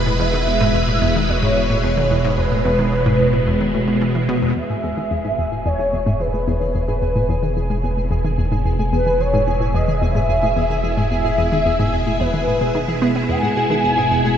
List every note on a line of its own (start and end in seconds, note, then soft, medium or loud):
0.00 4.54 E1 medium
0.00 4.55 B2 medium
0.00 4.56 G#3 medium
0.00 4.56 E4 medium
0.00 4.59 B4 medium
0.06 0.13 A2 medium
0.20 0.26 E2 medium
0.20 1.31 E5 loud
0.33 0.40 D#3 medium
0.47 0.51 E2 medium
0.61 0.65 G#2 loud
0.74 0.81 E2 medium
0.88 0.95 A2 medium
1.02 1.08 E2 loud
1.15 1.22 D#3 medium
1.29 1.33 E2 medium
1.29 2.40 C#5 loud
1.43 1.47 G#2 loud
1.56 1.63 E2 medium
1.70 1.77 A2 medium
1.84 1.90 E2 loud
1.97 2.04 D#3 medium
2.11 2.15 E2 medium
2.25 2.28 G#2 loud
2.38 2.45 E2 medium
2.38 4.02 B4 medium
2.52 2.58 A2 medium
2.65 2.72 E2 medium
2.79 2.86 D#3 medium
2.93 2.97 E2 medium
3.06 3.10 G#2 medium
3.20 3.26 E2 medium
3.33 3.40 A2 medium
3.47 3.54 E2 medium
3.61 3.67 D#3 medium
3.74 3.78 A2 medium
3.88 3.98 B2 medium
4.02 4.08 E3 medium
4.15 4.19 E3 medium
4.29 4.36 B2 loud
4.42 4.46 E2 medium
4.56 13.26 E1 medium
4.56 4.63 E2 medium
4.56 14.38 B2 medium
4.56 14.38 G#4 medium
4.56 5.61 E5 loud
4.56 13.32 G#5 medium
4.70 4.76 A2 medium
4.84 4.90 E2 medium
4.96 5.04 D#3 medium
4.96 14.38 G#3 medium
5.11 5.15 E2 medium
5.25 5.28 G#2 loud
5.32 14.38 E4 medium
5.38 5.45 E2 medium
5.52 5.58 A2 medium
5.66 5.72 E2 loud
5.66 6.21 C#5 loud
5.79 5.86 D#3 medium
5.93 5.97 E2 medium
6.06 6.10 G#2 loud
6.20 6.27 E2 medium
6.20 6.74 B4 medium
6.32 6.40 A2 medium
6.32 14.38 G#4 medium
6.47 6.54 E2 loud
6.61 6.67 D#3 medium
6.75 6.79 E2 medium
6.75 7.80 B4 medium
6.88 6.92 G#2 loud
7.02 7.08 E2 medium
7.15 7.22 A2 medium
7.29 7.36 E2 loud
7.43 7.49 D#3 medium
7.56 7.60 E2 medium
7.70 7.74 G#2 medium
7.84 7.90 E2 medium
7.97 8.04 A2 medium
8.11 8.17 E2 medium
8.25 8.31 D#3 medium
8.38 8.42 E2 medium
8.52 8.56 G#2 medium
8.65 8.72 E2 medium
8.79 8.86 A2 medium
8.93 8.99 E2 loud
8.93 9.21 B4 medium
9.06 9.13 D#3 medium
9.20 9.24 E2 medium
9.20 9.76 C#5 loud
9.34 9.38 G#2 loud
9.47 9.54 E2 medium
9.61 9.67 A2 medium
9.74 9.81 E2 medium
9.74 10.03 D#5 loud
9.88 9.95 D#3 medium
10.02 10.06 E2 medium
10.02 11.10 E5 loud
10.15 10.19 G#2 loud
10.29 10.36 E2 medium
10.43 10.49 A2 medium
10.56 10.63 E2 loud
10.70 10.77 D#3 medium
10.84 10.88 E2 medium
10.97 11.01 G#2 loud
11.11 11.17 E2 medium
11.11 12.21 E5 loud
11.25 11.31 A2 medium
11.38 11.45 E2 medium
11.52 11.58 D#3 medium
11.66 11.69 E2 medium
11.79 11.83 G#2 loud
11.93 11.99 E2 medium
12.06 12.13 A2 medium
12.20 12.27 E2 loud
12.20 13.02 B4 medium
12.34 12.40 D#3 medium
12.47 12.51 A2 medium
12.61 12.65 B2 medium
12.75 12.79 D#3 loud
12.88 12.95 E3 medium
13.02 13.12 B3 loud
13.16 13.25 B3 medium
13.29 14.38 E1 medium
13.29 13.36 E2 medium
13.29 14.38 F#5 medium
13.29 14.38 G#5 loud
13.43 13.49 A2 medium
13.56 13.63 B2 medium
13.70 13.77 D#3 medium
13.84 13.88 E2 medium
13.97 14.01 G#2 loud
14.11 14.17 E2 medium
14.24 14.31 A2 medium